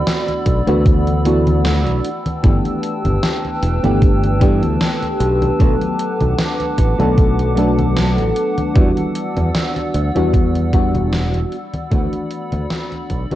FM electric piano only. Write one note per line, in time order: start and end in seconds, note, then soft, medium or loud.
0.00 0.62 E3 medium
0.00 0.63 A3 medium
0.00 0.63 B3 medium
0.00 0.63 D4 medium
0.00 0.64 F#4 medium
0.67 1.21 E3 medium
0.67 1.21 A3 medium
0.67 1.21 B3 medium
0.67 1.21 D4 medium
0.67 1.21 F#4 loud
1.25 2.02 E3 loud
1.25 2.02 A3 medium
1.25 2.02 B3 medium
1.25 2.03 D4 medium
1.25 2.03 F#4 loud
2.43 3.78 E3 medium
2.43 3.79 A3 medium
2.43 3.79 B3 medium
2.43 3.79 D4 medium
2.43 3.80 G4 medium
3.83 4.37 E3 medium
3.83 4.37 A3 medium
3.83 4.37 B3 medium
3.83 4.37 D4 medium
3.83 4.37 G4 loud
4.40 5.55 E3 medium
4.40 5.55 A3 medium
4.40 5.55 B3 medium
4.40 5.56 D4 medium
4.40 5.56 G4 loud
5.58 6.94 F#3 medium
5.58 6.94 A3 medium
5.58 6.95 B3 medium
5.58 6.95 D4 medium
5.58 6.95 A4 medium
6.98 7.52 F#3 medium
6.98 7.52 A3 medium
6.98 7.52 B3 medium
6.98 7.53 D4 medium
6.98 7.53 A4 loud
7.55 8.70 F#3 loud
7.55 8.71 A3 medium
7.55 8.71 B3 medium
7.55 8.71 D4 medium
7.55 8.72 A4 loud
8.74 10.10 E3 medium
8.74 10.10 G3 medium
8.74 10.10 B3 medium
8.74 10.11 D4 medium
8.74 10.11 F#4 medium
10.15 10.68 E3 medium
10.15 10.69 G3 medium
10.15 10.69 B3 medium
10.15 10.69 D4 medium
10.15 10.69 F#4 loud
10.73 11.50 E3 loud
10.73 11.50 G3 medium
10.73 11.50 B3 medium
10.73 11.50 D4 medium
10.73 11.50 F#4 loud
11.90 13.26 E3 medium
11.90 13.26 A3 medium
11.90 13.26 B3 medium
11.90 13.27 D4 medium
11.90 13.27 F#4 medium
13.30 13.35 E3 medium
13.30 13.35 A3 medium
13.30 13.35 B3 medium
13.30 13.35 D4 medium
13.30 13.35 F#4 loud